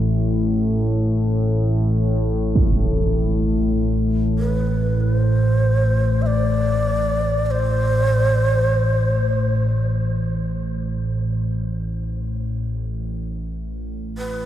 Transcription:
0.00 14.46 A1 medium
0.00 14.46 A2 medium
2.55 impact medium
4.39 5.01 B4 medium
5.01 5.17 B4 medium
5.17 6.24 C5 medium
6.22 6.27 E5 loud
6.26 7.46 D5 loud
7.46 7.52 D5 loud
7.51 9.91 C5 loud
14.18 14.46 B4 loud

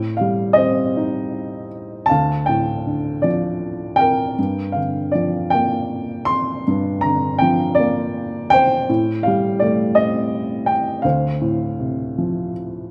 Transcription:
0.00 2.06 A2 medium
0.00 0.53 C5 medium
0.00 0.14 G5 medium
0.17 1.68 G3 medium
0.17 0.57 F5 medium
0.53 2.05 C5 medium
0.53 2.12 D#5 medium
0.58 2.06 C4 medium
0.97 2.07 D#4 medium
2.06 3.19 F5 medium
2.06 2.47 A5 medium
2.11 4.35 D2 medium
2.46 3.96 A2 soft
2.46 3.25 G5 medium
2.86 4.34 D3 soft
3.22 4.35 F3 soft
3.22 4.01 D5 medium
3.96 5.11 A#4 medium
3.96 4.77 G5 medium
4.39 6.63 G2 medium
4.72 5.10 F5 medium
4.76 6.25 D3 soft
5.12 6.63 F3 soft
5.12 5.49 D5 medium
5.50 7.01 A#3 soft
5.50 6.30 G5 medium
6.25 7.05 C6 medium
6.67 8.85 G2 medium
7.01 8.48 D3 soft
7.01 7.37 A#5 medium
7.39 8.85 F3 medium
7.39 7.78 G5 medium
7.75 8.53 D5 medium
7.79 8.86 A#3 soft
8.50 9.58 C5 medium
8.50 9.27 G5 loud
8.89 11.01 A2 medium
9.23 10.65 G3 medium
9.23 9.61 F5 medium
9.59 11.01 A3 medium
9.59 9.97 D5 medium
9.95 11.02 C4 medium
9.95 10.69 D#5 medium
10.66 11.05 G5 medium
11.02 12.91 D2 medium
11.02 12.53 C5 medium
11.02 12.52 F5 medium
11.41 12.91 A2 soft
11.78 12.91 C3 soft
12.18 12.91 F3 soft

